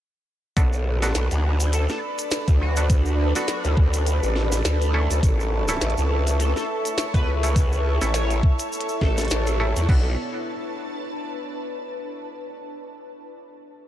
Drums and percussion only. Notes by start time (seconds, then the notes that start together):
0.57 kick, closed hi-hat, shaker
0.73 shaker
1.02 snare, closed hi-hat, shaker
1.06 snare
1.09 snare
1.12 snare, shaker
1.15 snare, closed hi-hat
1.19 snare
1.23 snare
1.27 snare, shaker
1.31 closed hi-hat
1.60 closed hi-hat, shaker
1.73 closed hi-hat, shaker
1.89 snare, shaker
2.18 closed hi-hat, shaker
2.31 snare, closed hi-hat, shaker
2.48 kick, closed hi-hat, shaker
2.76 closed hi-hat, shaker
2.90 kick, closed hi-hat, shaker
3.06 shaker
3.35 snare, closed hi-hat, shaker
3.48 snare, closed hi-hat, shaker
3.64 closed hi-hat, shaker
3.77 kick
3.93 closed hi-hat, shaker
4.07 closed hi-hat, shaker
4.23 shaker
4.36 snare
4.52 snare, closed hi-hat, shaker
4.65 snare, closed hi-hat, shaker
4.82 closed hi-hat, shaker
5.11 closed hi-hat, shaker
5.23 kick, closed hi-hat, shaker
5.40 shaker
5.68 snare, closed hi-hat, shaker
5.81 snare, closed hi-hat, shaker
5.90 closed hi-hat
5.98 shaker
6.27 closed hi-hat, shaker
6.40 closed hi-hat, shaker
6.56 snare, shaker
6.85 closed hi-hat, shaker
6.98 snare, closed hi-hat, shaker
7.14 kick, closed hi-hat, shaker
7.43 closed hi-hat, shaker
7.56 kick, closed hi-hat, shaker
7.73 shaker
8.01 snare, closed hi-hat, shaker
8.14 snare, closed hi-hat, shaker
8.30 closed hi-hat, shaker
8.43 kick
8.59 closed hi-hat, shaker
8.72 shaker
8.81 closed hi-hat
8.89 shaker
9.01 kick, snare
9.18 snare, closed hi-hat, shaker
9.21 closed hi-hat
9.25 closed hi-hat
9.28 snare, closed hi-hat, shaker
9.31 closed hi-hat
9.47 closed hi-hat, shaker
9.76 closed hi-hat, shaker
9.89 kick, crash